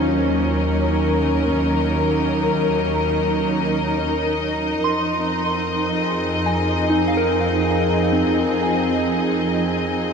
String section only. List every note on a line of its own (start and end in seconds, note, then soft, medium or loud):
0.00 4.74 F#3 medium
0.00 4.74 C#4 medium
0.00 10.13 D#4 medium
0.00 0.52 F4 medium
0.00 7.33 A#4 medium
0.00 0.50 C5 medium
0.00 10.13 D#5 medium
0.00 0.22 F5 medium
4.76 10.13 F3 medium
5.18 10.13 C4 medium
5.96 10.13 G#4 medium